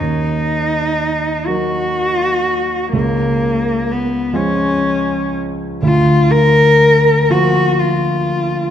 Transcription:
0.00 1.45 D#2 soft
0.00 1.48 D#4 soft
1.47 2.89 F#3 soft
1.47 2.89 A#3 soft
1.47 2.90 D#4 soft
1.47 2.93 F#4 medium
2.93 4.30 C#2 soft
2.93 3.93 A#3 medium
3.91 4.37 B3 soft
4.33 5.78 F3 soft
4.33 5.78 G#3 soft
4.33 5.32 C#4 medium
4.33 5.78 F4 soft
5.82 7.26 D2 soft
5.82 6.32 F4 medium
6.31 7.32 A#4 medium
7.30 8.71 F3 soft
7.30 8.71 A#3 soft
7.30 8.71 F4 soft
7.30 7.81 F#4 medium
7.79 8.71 F4 soft

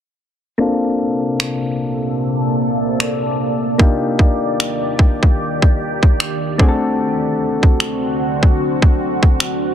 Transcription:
0.58 3.76 C3 medium
0.58 3.75 A#3 medium
0.58 3.76 A#3 medium
0.58 3.75 C4 medium
0.58 3.76 D4 medium
0.58 3.76 F4 medium
0.58 3.76 A4 medium
0.58 3.77 A4 medium
0.58 6.55 D5 medium
1.40 finger snap loud
3.00 finger snap loud
3.78 6.57 D#3 medium
3.78 6.55 A#3 medium
3.78 6.55 D4 medium
3.78 6.56 D#4 medium
3.78 6.56 F4 medium
3.78 6.57 G4 medium
3.78 kick loud
4.19 kick medium
4.60 finger snap loud
4.99 kick medium
5.23 kick medium
5.62 kick medium
6.03 kick medium
6.20 finger snap loud
6.58 9.74 D3 medium
6.58 9.74 A3 medium
6.58 9.74 C4 medium
6.58 9.74 D4 medium
6.58 9.74 F#4 medium
6.58 6.68 G#4 medium
6.58 kick loud
6.68 9.74 A4 medium
7.63 kick medium
7.80 finger snap loud
8.43 kick medium
8.82 kick medium
9.23 kick medium
9.40 finger snap loud

